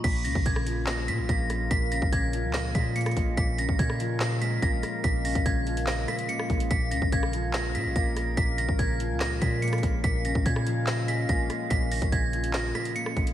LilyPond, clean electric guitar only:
\new Staff \with { instrumentName = "Clean electric guitar" } { \clef bass \time 4/4 \key bes \phrygian \tempo 4 = 144 bes,8 des8 bes,8 f8 bes,8 aes8 bes,4 | bes,8 des8 bes,8 f8 bes,8 aes8 bes,4 | bes,8 des8 bes,8 f8 bes,8 aes8 bes,4 | bes,8 des8 bes,8 f8 bes,8 aes8 bes,4 |
bes,8 des8 bes,8 f8 bes,8 aes8 bes,4 | bes,8 des8 bes,8 f8 bes,8 aes8 bes,4 | bes,8 des8 bes,8 f8 bes,8 aes8 bes,4 | bes,8 des8 bes,8 f8 bes,8 aes8 bes,4 | }